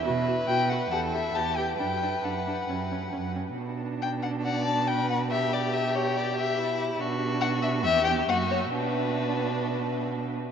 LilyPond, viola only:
\new Staff \with { instrumentName = "Viola" } { \time 4/4 \key b \minor \tempo 4 = 138 fis'8 fis'8 fis'8 fis'8 g'8 g'8 g'8 g'8 | d'8 d'8 d'8 d'8 cis'8 cis'8 cis'8 cis'8 | d'1 | g'1 |
d'2 b4 ais4 | d'2.~ d'8 r8 | }